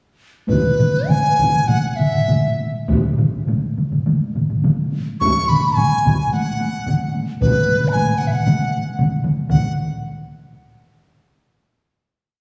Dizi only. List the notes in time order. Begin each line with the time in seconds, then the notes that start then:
0.49 B4
1.08 G#5
1.68 F#5
1.91 F#5
1.96 E5
5.21 C#6
5.49 B5
5.77 G#5
6.33 F#5
7.41 B4
7.88 B5
7.93 G#5
8.18 F#5
8.27 E5 F#5
9.50 F#5